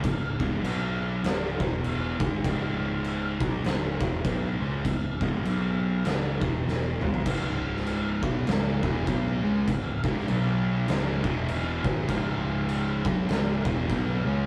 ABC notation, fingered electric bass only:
X:1
M:4/4
L:1/8
Q:"Swing" 1/4=100
K:C#m
V:1 name="Fingered electric bass" clef=bass
C,,, C,,, B,,,2 C,,, E,,,2 G,,, | C,,,3 B,,, C,,, E,,, B,,, C,, | C,,, C,,, B,,,2 C,,, E,,,2 G,,, | C,,,3 B,,, C,,, E,,, B,,, C,, |
C,,, C,,, B,,,2 C,,, E,,,2 G,,, | C,,,3 B,,, C,,, E,,, B,,, C,, |]